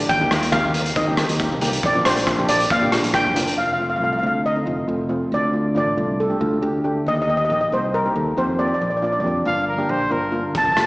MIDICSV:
0, 0, Header, 1, 6, 480
1, 0, Start_track
1, 0, Tempo, 435098
1, 115, Time_signature, 4, 2, 24, 8
1, 11986, End_track
2, 0, Start_track
2, 0, Title_t, "Steel pan"
2, 0, Program_c, 0, 114
2, 0, Note_on_c, 0, 74, 84
2, 102, Note_on_c, 0, 79, 92
2, 129, Note_off_c, 0, 74, 0
2, 575, Note_on_c, 0, 77, 93
2, 601, Note_off_c, 0, 79, 0
2, 1064, Note_on_c, 0, 75, 78
2, 1077, Note_off_c, 0, 77, 0
2, 1513, Note_off_c, 0, 75, 0
2, 2047, Note_on_c, 0, 74, 89
2, 2261, Note_off_c, 0, 74, 0
2, 2274, Note_on_c, 0, 72, 91
2, 2746, Note_on_c, 0, 74, 88
2, 2764, Note_off_c, 0, 72, 0
2, 2994, Note_off_c, 0, 74, 0
2, 2995, Note_on_c, 0, 77, 95
2, 3469, Note_on_c, 0, 79, 92
2, 3485, Note_off_c, 0, 77, 0
2, 3914, Note_off_c, 0, 79, 0
2, 3948, Note_on_c, 0, 77, 76
2, 4006, Note_off_c, 0, 77, 0
2, 4019, Note_on_c, 0, 77, 56
2, 4101, Note_off_c, 0, 77, 0
2, 4114, Note_on_c, 0, 77, 63
2, 4198, Note_off_c, 0, 77, 0
2, 4211, Note_on_c, 0, 77, 47
2, 4286, Note_off_c, 0, 77, 0
2, 4299, Note_on_c, 0, 77, 62
2, 4358, Note_off_c, 0, 77, 0
2, 4372, Note_on_c, 0, 77, 50
2, 4441, Note_off_c, 0, 77, 0
2, 4454, Note_on_c, 0, 77, 58
2, 4542, Note_off_c, 0, 77, 0
2, 4553, Note_on_c, 0, 77, 54
2, 4605, Note_off_c, 0, 77, 0
2, 4618, Note_on_c, 0, 77, 58
2, 4692, Note_off_c, 0, 77, 0
2, 4705, Note_on_c, 0, 77, 58
2, 4794, Note_off_c, 0, 77, 0
2, 4918, Note_on_c, 0, 75, 78
2, 5891, Note_on_c, 0, 74, 74
2, 5903, Note_off_c, 0, 75, 0
2, 6356, Note_off_c, 0, 74, 0
2, 6369, Note_on_c, 0, 74, 74
2, 6808, Note_off_c, 0, 74, 0
2, 6841, Note_on_c, 0, 69, 63
2, 7514, Note_off_c, 0, 69, 0
2, 7812, Note_on_c, 0, 75, 86
2, 7877, Note_off_c, 0, 75, 0
2, 7890, Note_on_c, 0, 75, 59
2, 7950, Note_off_c, 0, 75, 0
2, 7963, Note_on_c, 0, 75, 76
2, 8036, Note_off_c, 0, 75, 0
2, 8049, Note_on_c, 0, 75, 69
2, 8121, Note_off_c, 0, 75, 0
2, 8134, Note_on_c, 0, 75, 70
2, 8204, Note_off_c, 0, 75, 0
2, 8217, Note_on_c, 0, 75, 67
2, 8283, Note_off_c, 0, 75, 0
2, 8296, Note_on_c, 0, 75, 69
2, 8381, Note_off_c, 0, 75, 0
2, 8395, Note_on_c, 0, 75, 68
2, 8472, Note_off_c, 0, 75, 0
2, 8533, Note_on_c, 0, 72, 72
2, 8637, Note_off_c, 0, 72, 0
2, 8763, Note_on_c, 0, 70, 71
2, 9247, Note_on_c, 0, 72, 71
2, 9254, Note_off_c, 0, 70, 0
2, 9352, Note_off_c, 0, 72, 0
2, 9476, Note_on_c, 0, 74, 62
2, 9553, Note_off_c, 0, 74, 0
2, 9567, Note_on_c, 0, 74, 44
2, 9629, Note_off_c, 0, 74, 0
2, 9643, Note_on_c, 0, 74, 52
2, 9719, Note_off_c, 0, 74, 0
2, 9733, Note_on_c, 0, 74, 44
2, 9808, Note_off_c, 0, 74, 0
2, 9821, Note_on_c, 0, 74, 45
2, 9881, Note_off_c, 0, 74, 0
2, 9894, Note_on_c, 0, 74, 45
2, 9957, Note_off_c, 0, 74, 0
2, 9970, Note_on_c, 0, 74, 49
2, 10053, Note_off_c, 0, 74, 0
2, 10066, Note_on_c, 0, 74, 46
2, 10137, Note_off_c, 0, 74, 0
2, 10151, Note_on_c, 0, 74, 51
2, 10210, Note_off_c, 0, 74, 0
2, 10223, Note_on_c, 0, 74, 49
2, 10308, Note_off_c, 0, 74, 0
2, 11666, Note_on_c, 0, 81, 77
2, 11727, Note_off_c, 0, 81, 0
2, 11741, Note_on_c, 0, 81, 62
2, 11814, Note_off_c, 0, 81, 0
2, 11827, Note_on_c, 0, 81, 67
2, 11891, Note_off_c, 0, 81, 0
2, 11904, Note_on_c, 0, 81, 53
2, 11984, Note_off_c, 0, 81, 0
2, 11986, End_track
3, 0, Start_track
3, 0, Title_t, "Trumpet"
3, 0, Program_c, 1, 56
3, 10444, Note_on_c, 1, 77, 82
3, 10664, Note_off_c, 1, 77, 0
3, 10676, Note_on_c, 1, 70, 71
3, 10925, Note_on_c, 1, 72, 73
3, 10941, Note_off_c, 1, 70, 0
3, 11159, Note_on_c, 1, 70, 62
3, 11175, Note_off_c, 1, 72, 0
3, 11526, Note_off_c, 1, 70, 0
3, 11986, End_track
4, 0, Start_track
4, 0, Title_t, "Steel pan"
4, 0, Program_c, 2, 114
4, 231, Note_on_c, 2, 63, 70
4, 233, Note_on_c, 2, 58, 77
4, 236, Note_on_c, 2, 67, 89
4, 304, Note_off_c, 2, 63, 0
4, 305, Note_off_c, 2, 58, 0
4, 306, Note_off_c, 2, 67, 0
4, 342, Note_on_c, 2, 58, 69
4, 343, Note_on_c, 2, 63, 64
4, 345, Note_on_c, 2, 65, 80
4, 497, Note_off_c, 2, 58, 0
4, 498, Note_off_c, 2, 63, 0
4, 499, Note_off_c, 2, 65, 0
4, 585, Note_on_c, 2, 58, 70
4, 586, Note_on_c, 2, 63, 66
4, 586, Note_on_c, 2, 70, 74
4, 665, Note_off_c, 2, 58, 0
4, 666, Note_off_c, 2, 63, 0
4, 666, Note_off_c, 2, 70, 0
4, 705, Note_on_c, 2, 67, 83
4, 706, Note_on_c, 2, 58, 74
4, 706, Note_on_c, 2, 63, 70
4, 997, Note_off_c, 2, 58, 0
4, 997, Note_off_c, 2, 63, 0
4, 997, Note_off_c, 2, 67, 0
4, 1179, Note_on_c, 2, 63, 67
4, 1180, Note_on_c, 2, 58, 68
4, 1185, Note_on_c, 2, 67, 79
4, 1256, Note_off_c, 2, 63, 0
4, 1257, Note_off_c, 2, 58, 0
4, 1259, Note_off_c, 2, 67, 0
4, 1291, Note_on_c, 2, 58, 73
4, 1295, Note_on_c, 2, 63, 71
4, 1295, Note_on_c, 2, 67, 83
4, 1450, Note_off_c, 2, 58, 0
4, 1452, Note_off_c, 2, 63, 0
4, 1452, Note_off_c, 2, 67, 0
4, 1532, Note_on_c, 2, 63, 63
4, 1534, Note_on_c, 2, 58, 73
4, 1537, Note_on_c, 2, 67, 82
4, 1691, Note_off_c, 2, 58, 0
4, 1691, Note_off_c, 2, 63, 0
4, 1693, Note_off_c, 2, 67, 0
4, 1783, Note_on_c, 2, 58, 90
4, 1783, Note_on_c, 2, 67, 96
4, 1785, Note_on_c, 2, 63, 75
4, 2003, Note_off_c, 2, 58, 0
4, 2003, Note_off_c, 2, 67, 0
4, 2004, Note_off_c, 2, 63, 0
4, 2146, Note_on_c, 2, 58, 71
4, 2147, Note_on_c, 2, 62, 68
4, 2151, Note_on_c, 2, 65, 83
4, 2219, Note_off_c, 2, 58, 0
4, 2219, Note_off_c, 2, 62, 0
4, 2221, Note_off_c, 2, 65, 0
4, 2266, Note_on_c, 2, 58, 67
4, 2266, Note_on_c, 2, 67, 78
4, 2269, Note_on_c, 2, 62, 62
4, 2417, Note_off_c, 2, 58, 0
4, 2417, Note_off_c, 2, 67, 0
4, 2418, Note_off_c, 2, 62, 0
4, 2501, Note_on_c, 2, 65, 74
4, 2502, Note_on_c, 2, 58, 70
4, 2506, Note_on_c, 2, 62, 63
4, 2581, Note_off_c, 2, 58, 0
4, 2581, Note_off_c, 2, 65, 0
4, 2583, Note_off_c, 2, 62, 0
4, 2628, Note_on_c, 2, 62, 74
4, 2629, Note_on_c, 2, 58, 79
4, 2634, Note_on_c, 2, 67, 82
4, 2916, Note_off_c, 2, 62, 0
4, 2917, Note_off_c, 2, 58, 0
4, 2919, Note_off_c, 2, 67, 0
4, 3114, Note_on_c, 2, 62, 68
4, 3114, Note_on_c, 2, 67, 82
4, 3115, Note_on_c, 2, 58, 79
4, 3181, Note_off_c, 2, 62, 0
4, 3182, Note_off_c, 2, 58, 0
4, 3182, Note_off_c, 2, 67, 0
4, 3227, Note_on_c, 2, 58, 81
4, 3228, Note_on_c, 2, 62, 68
4, 3228, Note_on_c, 2, 65, 85
4, 3377, Note_off_c, 2, 58, 0
4, 3377, Note_off_c, 2, 62, 0
4, 3377, Note_off_c, 2, 65, 0
4, 3455, Note_on_c, 2, 58, 68
4, 3460, Note_on_c, 2, 62, 63
4, 3461, Note_on_c, 2, 67, 82
4, 3610, Note_off_c, 2, 58, 0
4, 3613, Note_off_c, 2, 62, 0
4, 3614, Note_off_c, 2, 67, 0
4, 3699, Note_on_c, 2, 58, 75
4, 3704, Note_on_c, 2, 62, 70
4, 3704, Note_on_c, 2, 65, 78
4, 3920, Note_off_c, 2, 58, 0
4, 3923, Note_off_c, 2, 62, 0
4, 3923, Note_off_c, 2, 65, 0
4, 4182, Note_on_c, 2, 57, 51
4, 4182, Note_on_c, 2, 60, 53
4, 4183, Note_on_c, 2, 65, 64
4, 4334, Note_off_c, 2, 57, 0
4, 4334, Note_off_c, 2, 60, 0
4, 4335, Note_off_c, 2, 65, 0
4, 4423, Note_on_c, 2, 57, 57
4, 4426, Note_on_c, 2, 60, 46
4, 4426, Note_on_c, 2, 65, 62
4, 4575, Note_off_c, 2, 57, 0
4, 4576, Note_off_c, 2, 60, 0
4, 4576, Note_off_c, 2, 65, 0
4, 4663, Note_on_c, 2, 57, 55
4, 4663, Note_on_c, 2, 62, 57
4, 4664, Note_on_c, 2, 60, 48
4, 4883, Note_off_c, 2, 57, 0
4, 4883, Note_off_c, 2, 60, 0
4, 4883, Note_off_c, 2, 62, 0
4, 5027, Note_on_c, 2, 57, 59
4, 5028, Note_on_c, 2, 60, 54
4, 5032, Note_on_c, 2, 63, 63
4, 5099, Note_off_c, 2, 57, 0
4, 5099, Note_off_c, 2, 60, 0
4, 5101, Note_off_c, 2, 63, 0
4, 5138, Note_on_c, 2, 57, 57
4, 5138, Note_on_c, 2, 65, 61
4, 5144, Note_on_c, 2, 60, 55
4, 5293, Note_off_c, 2, 57, 0
4, 5293, Note_off_c, 2, 65, 0
4, 5296, Note_off_c, 2, 60, 0
4, 5378, Note_on_c, 2, 60, 48
4, 5380, Note_on_c, 2, 57, 55
4, 5383, Note_on_c, 2, 65, 64
4, 5533, Note_off_c, 2, 60, 0
4, 5534, Note_off_c, 2, 57, 0
4, 5536, Note_off_c, 2, 65, 0
4, 5616, Note_on_c, 2, 57, 65
4, 5618, Note_on_c, 2, 65, 72
4, 5619, Note_on_c, 2, 60, 66
4, 5863, Note_off_c, 2, 57, 0
4, 5864, Note_off_c, 2, 60, 0
4, 5864, Note_off_c, 2, 65, 0
4, 6101, Note_on_c, 2, 57, 57
4, 6102, Note_on_c, 2, 62, 52
4, 6104, Note_on_c, 2, 65, 59
4, 6256, Note_off_c, 2, 57, 0
4, 6256, Note_off_c, 2, 62, 0
4, 6257, Note_off_c, 2, 65, 0
4, 6339, Note_on_c, 2, 57, 58
4, 6340, Note_on_c, 2, 65, 66
4, 6343, Note_on_c, 2, 62, 54
4, 6495, Note_off_c, 2, 57, 0
4, 6495, Note_off_c, 2, 65, 0
4, 6497, Note_off_c, 2, 62, 0
4, 6584, Note_on_c, 2, 57, 58
4, 6585, Note_on_c, 2, 62, 54
4, 6589, Note_on_c, 2, 65, 62
4, 6805, Note_off_c, 2, 57, 0
4, 6806, Note_off_c, 2, 62, 0
4, 6808, Note_off_c, 2, 65, 0
4, 6946, Note_on_c, 2, 67, 68
4, 6948, Note_on_c, 2, 57, 61
4, 6951, Note_on_c, 2, 62, 56
4, 7021, Note_off_c, 2, 57, 0
4, 7021, Note_off_c, 2, 67, 0
4, 7023, Note_off_c, 2, 62, 0
4, 7061, Note_on_c, 2, 57, 62
4, 7062, Note_on_c, 2, 62, 54
4, 7068, Note_on_c, 2, 65, 70
4, 7216, Note_off_c, 2, 57, 0
4, 7217, Note_off_c, 2, 62, 0
4, 7220, Note_off_c, 2, 65, 0
4, 7302, Note_on_c, 2, 57, 56
4, 7303, Note_on_c, 2, 62, 53
4, 7304, Note_on_c, 2, 67, 67
4, 7457, Note_off_c, 2, 57, 0
4, 7458, Note_off_c, 2, 62, 0
4, 7458, Note_off_c, 2, 67, 0
4, 7548, Note_on_c, 2, 57, 73
4, 7548, Note_on_c, 2, 62, 63
4, 7550, Note_on_c, 2, 67, 75
4, 7791, Note_off_c, 2, 57, 0
4, 7791, Note_off_c, 2, 62, 0
4, 7792, Note_off_c, 2, 67, 0
4, 8025, Note_on_c, 2, 58, 60
4, 8026, Note_on_c, 2, 67, 68
4, 8030, Note_on_c, 2, 63, 53
4, 8180, Note_off_c, 2, 58, 0
4, 8180, Note_off_c, 2, 67, 0
4, 8182, Note_off_c, 2, 63, 0
4, 8265, Note_on_c, 2, 63, 51
4, 8266, Note_on_c, 2, 58, 57
4, 8268, Note_on_c, 2, 67, 67
4, 8420, Note_off_c, 2, 58, 0
4, 8420, Note_off_c, 2, 63, 0
4, 8421, Note_off_c, 2, 67, 0
4, 8517, Note_on_c, 2, 63, 52
4, 8519, Note_on_c, 2, 58, 55
4, 8522, Note_on_c, 2, 67, 60
4, 8734, Note_off_c, 2, 63, 0
4, 8735, Note_off_c, 2, 58, 0
4, 8736, Note_off_c, 2, 67, 0
4, 8886, Note_on_c, 2, 63, 55
4, 8887, Note_on_c, 2, 67, 70
4, 8889, Note_on_c, 2, 58, 64
4, 8952, Note_off_c, 2, 63, 0
4, 8953, Note_off_c, 2, 58, 0
4, 8953, Note_off_c, 2, 67, 0
4, 9003, Note_on_c, 2, 63, 55
4, 9004, Note_on_c, 2, 58, 61
4, 9006, Note_on_c, 2, 69, 66
4, 9149, Note_off_c, 2, 63, 0
4, 9150, Note_off_c, 2, 58, 0
4, 9151, Note_off_c, 2, 69, 0
4, 9230, Note_on_c, 2, 58, 56
4, 9231, Note_on_c, 2, 63, 56
4, 9233, Note_on_c, 2, 67, 63
4, 9383, Note_off_c, 2, 58, 0
4, 9383, Note_off_c, 2, 63, 0
4, 9385, Note_off_c, 2, 67, 0
4, 9480, Note_on_c, 2, 58, 62
4, 9481, Note_on_c, 2, 63, 51
4, 9483, Note_on_c, 2, 67, 67
4, 9719, Note_off_c, 2, 58, 0
4, 9719, Note_off_c, 2, 63, 0
4, 9720, Note_off_c, 2, 67, 0
4, 9953, Note_on_c, 2, 62, 53
4, 9954, Note_on_c, 2, 58, 57
4, 9954, Note_on_c, 2, 65, 69
4, 10105, Note_off_c, 2, 58, 0
4, 10105, Note_off_c, 2, 62, 0
4, 10105, Note_off_c, 2, 65, 0
4, 10194, Note_on_c, 2, 58, 55
4, 10196, Note_on_c, 2, 62, 52
4, 10197, Note_on_c, 2, 67, 57
4, 10345, Note_off_c, 2, 58, 0
4, 10346, Note_off_c, 2, 62, 0
4, 10347, Note_off_c, 2, 67, 0
4, 10433, Note_on_c, 2, 58, 64
4, 10434, Note_on_c, 2, 62, 63
4, 10435, Note_on_c, 2, 65, 75
4, 10653, Note_off_c, 2, 58, 0
4, 10653, Note_off_c, 2, 62, 0
4, 10654, Note_off_c, 2, 65, 0
4, 10793, Note_on_c, 2, 58, 74
4, 10793, Note_on_c, 2, 62, 71
4, 10793, Note_on_c, 2, 67, 77
4, 10867, Note_off_c, 2, 58, 0
4, 10867, Note_off_c, 2, 62, 0
4, 10867, Note_off_c, 2, 67, 0
4, 10912, Note_on_c, 2, 58, 72
4, 10915, Note_on_c, 2, 62, 65
4, 10915, Note_on_c, 2, 67, 79
4, 11065, Note_off_c, 2, 58, 0
4, 11066, Note_off_c, 2, 62, 0
4, 11066, Note_off_c, 2, 67, 0
4, 11144, Note_on_c, 2, 62, 57
4, 11145, Note_on_c, 2, 58, 67
4, 11148, Note_on_c, 2, 65, 72
4, 11301, Note_off_c, 2, 58, 0
4, 11301, Note_off_c, 2, 62, 0
4, 11303, Note_off_c, 2, 65, 0
4, 11383, Note_on_c, 2, 58, 71
4, 11385, Note_on_c, 2, 62, 63
4, 11385, Note_on_c, 2, 65, 83
4, 11631, Note_off_c, 2, 58, 0
4, 11632, Note_off_c, 2, 62, 0
4, 11632, Note_off_c, 2, 65, 0
4, 11867, Note_on_c, 2, 65, 67
4, 11870, Note_on_c, 2, 57, 58
4, 11873, Note_on_c, 2, 60, 52
4, 11986, Note_off_c, 2, 57, 0
4, 11986, Note_off_c, 2, 60, 0
4, 11986, Note_off_c, 2, 65, 0
4, 11986, End_track
5, 0, Start_track
5, 0, Title_t, "Fingered electric bass"
5, 0, Program_c, 3, 33
5, 107, Note_on_c, 3, 39, 91
5, 301, Note_off_c, 3, 39, 0
5, 339, Note_on_c, 3, 39, 89
5, 637, Note_off_c, 3, 39, 0
5, 709, Note_on_c, 3, 39, 77
5, 994, Note_off_c, 3, 39, 0
5, 1061, Note_on_c, 3, 51, 93
5, 1357, Note_off_c, 3, 51, 0
5, 1429, Note_on_c, 3, 39, 91
5, 1623, Note_off_c, 3, 39, 0
5, 1679, Note_on_c, 3, 36, 86
5, 1959, Note_off_c, 3, 36, 0
5, 2022, Note_on_c, 3, 34, 93
5, 2216, Note_off_c, 3, 34, 0
5, 2269, Note_on_c, 3, 34, 78
5, 2561, Note_off_c, 3, 34, 0
5, 2637, Note_on_c, 3, 34, 82
5, 2917, Note_off_c, 3, 34, 0
5, 2983, Note_on_c, 3, 46, 103
5, 3277, Note_off_c, 3, 46, 0
5, 3355, Note_on_c, 3, 34, 89
5, 3546, Note_off_c, 3, 34, 0
5, 3595, Note_on_c, 3, 30, 87
5, 3876, Note_off_c, 3, 30, 0
5, 3949, Note_on_c, 3, 29, 71
5, 4432, Note_off_c, 3, 29, 0
5, 4432, Note_on_c, 3, 36, 77
5, 4621, Note_off_c, 3, 36, 0
5, 4669, Note_on_c, 3, 38, 72
5, 5052, Note_off_c, 3, 38, 0
5, 5149, Note_on_c, 3, 29, 78
5, 5340, Note_off_c, 3, 29, 0
5, 5390, Note_on_c, 3, 29, 75
5, 5773, Note_off_c, 3, 29, 0
5, 5868, Note_on_c, 3, 38, 72
5, 6352, Note_on_c, 3, 33, 77
5, 6369, Note_off_c, 3, 38, 0
5, 6543, Note_off_c, 3, 33, 0
5, 6593, Note_on_c, 3, 36, 69
5, 6976, Note_off_c, 3, 36, 0
5, 7070, Note_on_c, 3, 38, 88
5, 7262, Note_off_c, 3, 38, 0
5, 7309, Note_on_c, 3, 38, 80
5, 7694, Note_off_c, 3, 38, 0
5, 7794, Note_on_c, 3, 39, 74
5, 8274, Note_on_c, 3, 34, 72
5, 8290, Note_off_c, 3, 39, 0
5, 8466, Note_off_c, 3, 34, 0
5, 8519, Note_on_c, 3, 36, 69
5, 8901, Note_off_c, 3, 36, 0
5, 8998, Note_on_c, 3, 39, 80
5, 9188, Note_off_c, 3, 39, 0
5, 9241, Note_on_c, 3, 41, 85
5, 9622, Note_off_c, 3, 41, 0
5, 9723, Note_on_c, 3, 34, 70
5, 10197, Note_off_c, 3, 34, 0
5, 10197, Note_on_c, 3, 41, 71
5, 10388, Note_off_c, 3, 41, 0
5, 10437, Note_on_c, 3, 31, 75
5, 10821, Note_off_c, 3, 31, 0
5, 10913, Note_on_c, 3, 34, 78
5, 11106, Note_off_c, 3, 34, 0
5, 11157, Note_on_c, 3, 31, 71
5, 11540, Note_off_c, 3, 31, 0
5, 11637, Note_on_c, 3, 29, 79
5, 11986, Note_off_c, 3, 29, 0
5, 11986, End_track
6, 0, Start_track
6, 0, Title_t, "Drums"
6, 105, Note_on_c, 9, 36, 110
6, 108, Note_on_c, 9, 42, 61
6, 216, Note_off_c, 9, 36, 0
6, 219, Note_off_c, 9, 42, 0
6, 341, Note_on_c, 9, 37, 86
6, 341, Note_on_c, 9, 42, 76
6, 452, Note_off_c, 9, 37, 0
6, 452, Note_off_c, 9, 42, 0
6, 470, Note_on_c, 9, 42, 58
6, 578, Note_off_c, 9, 42, 0
6, 578, Note_on_c, 9, 37, 78
6, 578, Note_on_c, 9, 42, 59
6, 583, Note_on_c, 9, 36, 82
6, 688, Note_off_c, 9, 37, 0
6, 688, Note_off_c, 9, 42, 0
6, 693, Note_off_c, 9, 36, 0
6, 818, Note_on_c, 9, 42, 75
6, 929, Note_off_c, 9, 42, 0
6, 946, Note_on_c, 9, 42, 61
6, 1056, Note_off_c, 9, 42, 0
6, 1058, Note_on_c, 9, 42, 63
6, 1060, Note_on_c, 9, 36, 104
6, 1168, Note_off_c, 9, 42, 0
6, 1171, Note_off_c, 9, 36, 0
6, 1295, Note_on_c, 9, 37, 78
6, 1295, Note_on_c, 9, 42, 78
6, 1405, Note_off_c, 9, 37, 0
6, 1405, Note_off_c, 9, 42, 0
6, 1424, Note_on_c, 9, 42, 62
6, 1534, Note_off_c, 9, 42, 0
6, 1542, Note_on_c, 9, 36, 85
6, 1542, Note_on_c, 9, 42, 60
6, 1652, Note_off_c, 9, 36, 0
6, 1653, Note_off_c, 9, 42, 0
6, 1779, Note_on_c, 9, 42, 74
6, 1890, Note_off_c, 9, 42, 0
6, 1908, Note_on_c, 9, 42, 61
6, 2019, Note_off_c, 9, 42, 0
6, 2022, Note_on_c, 9, 36, 113
6, 2024, Note_on_c, 9, 42, 65
6, 2132, Note_off_c, 9, 36, 0
6, 2134, Note_off_c, 9, 42, 0
6, 2264, Note_on_c, 9, 37, 79
6, 2264, Note_on_c, 9, 42, 88
6, 2374, Note_off_c, 9, 37, 0
6, 2374, Note_off_c, 9, 42, 0
6, 2391, Note_on_c, 9, 42, 60
6, 2502, Note_off_c, 9, 42, 0
6, 2503, Note_on_c, 9, 36, 86
6, 2507, Note_on_c, 9, 37, 76
6, 2507, Note_on_c, 9, 42, 60
6, 2613, Note_off_c, 9, 36, 0
6, 2618, Note_off_c, 9, 37, 0
6, 2618, Note_off_c, 9, 42, 0
6, 2742, Note_on_c, 9, 42, 91
6, 2852, Note_off_c, 9, 42, 0
6, 2869, Note_on_c, 9, 42, 64
6, 2979, Note_off_c, 9, 42, 0
6, 2980, Note_on_c, 9, 42, 70
6, 2983, Note_on_c, 9, 36, 107
6, 3090, Note_off_c, 9, 42, 0
6, 3094, Note_off_c, 9, 36, 0
6, 3224, Note_on_c, 9, 37, 73
6, 3224, Note_on_c, 9, 42, 79
6, 3335, Note_off_c, 9, 37, 0
6, 3335, Note_off_c, 9, 42, 0
6, 3353, Note_on_c, 9, 42, 64
6, 3462, Note_off_c, 9, 42, 0
6, 3462, Note_on_c, 9, 37, 80
6, 3462, Note_on_c, 9, 42, 65
6, 3464, Note_on_c, 9, 36, 90
6, 3572, Note_off_c, 9, 37, 0
6, 3572, Note_off_c, 9, 42, 0
6, 3574, Note_off_c, 9, 36, 0
6, 3708, Note_on_c, 9, 42, 78
6, 3818, Note_off_c, 9, 42, 0
6, 3835, Note_on_c, 9, 42, 66
6, 3945, Note_off_c, 9, 42, 0
6, 11638, Note_on_c, 9, 36, 93
6, 11638, Note_on_c, 9, 42, 52
6, 11748, Note_off_c, 9, 36, 0
6, 11748, Note_off_c, 9, 42, 0
6, 11879, Note_on_c, 9, 37, 75
6, 11879, Note_on_c, 9, 42, 68
6, 11986, Note_off_c, 9, 37, 0
6, 11986, Note_off_c, 9, 42, 0
6, 11986, End_track
0, 0, End_of_file